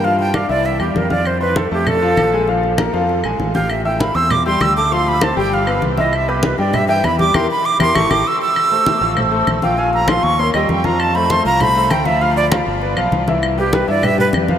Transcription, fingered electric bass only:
\new Staff \with { instrumentName = "Fingered electric bass" } { \clef bass \time 4/4 \key c \major \tempo 4 = 197 g,4. c,4 e,8 f,4~ | f,4. f,4. bes,,4~ | bes,,4. f,4 bes,,8 a,,4~ | a,,4. e,4. d,4~ |
d,4. g,,4. c,4~ | c,4. g,4. e,4 | e,8 r4 e,8 a,,8 a,,8 r4 | r4. a,,4. bes,,4~ |
bes,,4. ees,4 ees,8 f,4~ | f,4. c,4. d,4~ | d,4. g,,4 b,,8 c,4~ | c,4. g,4. f,4 | }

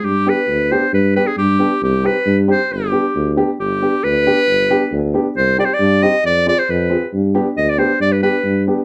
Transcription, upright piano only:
\new Staff \with { instrumentName = "Upright piano" } { \time 2/4 \tempo 4 = 136 r8 <b d' g'>16 r8. <b d' g'>16 r16 | r8 <b d' g'>16 r8. <b d' g'>16 r16 | r8 <c' ees' g'>16 r8. <c' ees' g'>16 r16 | r8 <b d' g'>16 r8. <b d' g'>16 r16 |
r8 <b d' g'>16 r8. <b d' g'>16 r16 | r8 <b d' g'>16 r8. <b d' g'>16 r16 | r8 <c' ees' g'>16 r8. <c' ees' g'>16 r16 | r8 <c' f' aes'>16 r8. <c' f' aes'>16 r16 |
r8 <b d' g'>16 r8. <b d' g'>16 r16 | r8 <b d' g'>16 r8. <b d' g'>16 r16 | }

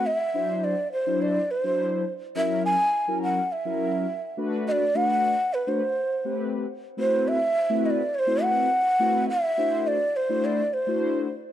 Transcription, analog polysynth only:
\new Staff \with { instrumentName = "Analog polysynth" } { \time 4/4 \key a \dorian \tempo 4 = 104 r8 <fis d' e' c''>8. r8 <fis d' e' c''>8 r8 <fis d' e' c''>8. r8 | <fis cis' e' ais'>8. r8 <fis cis' e' ais'>8 r8 <fis cis' e' ais'>8. r8 <a d' fis' b'>8~ | <a d' fis' b'>16 r16 <a d' fis' b'>8. r8 <a d' fis' b'>16 r8. <a c' g' b'>8. r8 | <a c' e' fis' b'>8. r8 <a c' e' fis' b'>8 r8 <a c' e' fis' a' b'>8. r8 <a c' e' fis' b'>8 |
r8 <a d' e' fis' c''>8. r8 <a d' e' fis' c''>8 r8 <a d' e' fis' c''>8. r8 | }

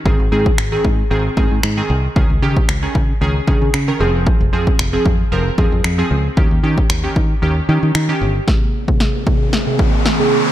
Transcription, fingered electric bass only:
\new Staff \with { instrumentName = "Fingered electric bass" } { \clef bass \time 4/4 \key aes \major \tempo 4 = 114 aes,,16 aes,,16 aes,8 aes,,8 aes,8 aes,,8 aes,16 aes,16 aes,8 c,8 | des,16 des,16 des8 des,8 des8 des,8 des16 des16 des8 f,,8~ | f,,16 f,,16 f,8 f,,8 f,8 f,,8 f,16 f,16 f,8 des,8 | ees,16 ees,16 ees8 ees,8 ees8 ees,8 ees16 ees16 ees8 g,,8 |
r1 | }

